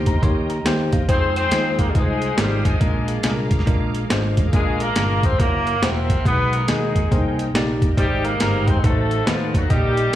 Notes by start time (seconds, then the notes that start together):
Already playing: D2 A#3 D#4 G4 A#4 C5 D#5 G5 C6
0.06 A#5, kick, closed hi-hat
0.22 D#2 D#3 A#3 D#4 G4 C#5 C6, kick, closed hi-hat
0.50 A#5, closed hi-hat
0.65 D#2 A#3 D#4 G4 C5 G5, snare, closed hi-hat
0.92 E2 F5, kick, closed hi-hat
1.08 F2 G#3 C4 D#4 F4 G#4 C5 F5 D#6, kick, closed hi-hat
1.36 C4 D#4 G#4 C5, closed hi-hat
1.51 D#2 G#3 D#4 F4 G5, snare, closed hi-hat
1.79 A#3 A#4, kick, closed hi-hat
1.89 G3
1.95 C2 G#3 C4 D#4 F4 G#4 B4, kick, closed hi-hat
2.01 C5
2.22 closed hi-hat
2.37 G#1 G3 G#3 D#4 F4 G4 A#4, snare, closed hi-hat
2.43 C5
2.65 A1 G#3 D4 F4 G#4, kick, closed hi-hat
2.80 A#1 A#2 G#3 D4 F4 A#4 D6, kick, closed hi-hat
3.08 closed hi-hat
3.23 C2 G#3 D4 F4 G#4, snare, closed hi-hat
3.29 A#4
3.51 kick, closed hi-hat
3.59 snare
3.66 A#1 G#3 D4 F4 A#4, kick, closed hi-hat
3.95 closed hi-hat
4.10 G#1 G#3 D4 F4 C5, snare, closed hi-hat
4.37 A1, kick, closed hi-hat
4.53 A#1 A#2 G#3 D4 F4 G#4 A#4, kick, closed hi-hat
4.80 A#3 D4 F4 A#4, closed hi-hat
4.96 G1 G#3 D4 F4 A#4, snare, closed hi-hat
5.23 C4 C5, kick, closed hi-hat
5.39 F#1 A#3 E4 F#4 A#4 C5 E5 F#5, kick, closed hi-hat
5.45 C#5
5.66 A#3 A#4, closed hi-hat
5.82 E1 A#3 C4 E4 F#4 C5, snare, closed hi-hat
6.10 kick, closed hi-hat
6.25 B1 B2 G#3 B3 D#4 F#4 G#4 B4, kick, closed hi-hat
6.53 A#3 A#4, closed hi-hat
6.68 D#2 G#3 D#4 F#4 G#4 A#4, snare, closed hi-hat
6.96 kick, closed hi-hat
7.11 C2 C3 A#3 D4 A#4 C5 G5, kick, closed hi-hat
7.17 D#4
7.39 closed hi-hat
7.54 A#1 A#3 D#4 G4 D5, snare, closed hi-hat
7.82 kick, closed hi-hat
7.97 G#1 G#2 G3 G#3 C4 D#4 G4 C5, kick, closed hi-hat
8.24 A#3 A#4, closed hi-hat
8.40 G1 G#3 A#3 D#4 G4 A#4 C5, snare, closed hi-hat
8.67 C4 C5, kick, closed hi-hat
8.79 G#3 A4 F#5
8.83 A1 A2 A3 C4 D#4 F#4 A4 B4, kick, closed hi-hat
8.89 C5
9.11 closed hi-hat
9.26 D#2 F3 A3 D#4 F4 F#4 B4, snare, closed hi-hat
9.48 F3
9.54 F#3 F#4, kick, closed hi-hat
9.70 A#1 A#2 G3 A#3 D#4 F#4 G4 A#4 D#5 G5 D#6, kick, closed hi-hat
9.75 G4
9.97 closed hi-hat